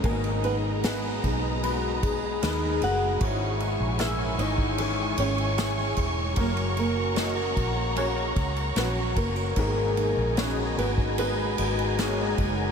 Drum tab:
RD |xxx-x-x-x-x-x-x-|x-x-x-x-x-xxx-x-|xxx-x-x-x-xxx-x-|x-x-x-x-x-xxx-x-|
SD |----o-------o---|----o-------o---|----o-------o---|----o-------o---|
BD |o-----o---o-----|o------o------o-|o-----o---o---o-|o------o------o-|